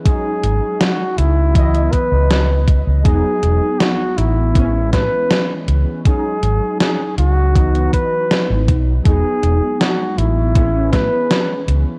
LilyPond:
<<
  \new Staff \with { instrumentName = "Flugelhorn" } { \time 4/4 \key e \major \tempo 4 = 80 gis'4 fis'8 e'4 b'4 r8 | gis'4 fis'8 e'4 b'4 r8 | gis'4 gis'8 fis'4 b'4 r8 | gis'4 fis'8 e'4 b'4 r8 | }
  \new Staff \with { instrumentName = "Synth keys" } { \time 4/4 \key e \major <fis gis cis' dis'>2 <e fis b dis''>2 | <fis gis b dis'>2 <e gis b cis'>2 | <fis gis cis' dis'>2 <e fis b dis'>2 | <fis gis b dis'>2 <e gis b cis'>2 | }
  \new Staff \with { instrumentName = "Fingered electric bass" } { \clef bass \time 4/4 \key e \major r8 gis,,16 r8. cis,4 r16 cis,4 cis,16 | r8 e,,16 r8. a,,4 a,16 r8. cis,16 r16 | r8 gis,,16 r8. cis,4 r8. gis,,16 b,,8 | e,,16 r16 e,,16 r8. a,,4 a,16 r8. cis,16 r16 | }
  \new DrumStaff \with { instrumentName = "Drums" } \drummode { \time 4/4 <hh bd>8 hh8 <hh sn>8 hh8 <hh bd>16 hh16 <hh bd>8 <hh sn>8 <hh bd>8 | <hh bd>8 hh8 <hh sn>8 hh8 <hh bd>8 <hh bd sn>8 <hh sn>8 hh8 | <hh bd>8 hh8 <hh sn>8 hh8 <hh bd>16 hh16 <hh bd>8 <hh sn>8 <hh bd>8 | <hh bd>8 hh8 <hh sn>8 hh8 <hh bd>8 <hh bd sn>8 <hh sn>8 hh8 | }
>>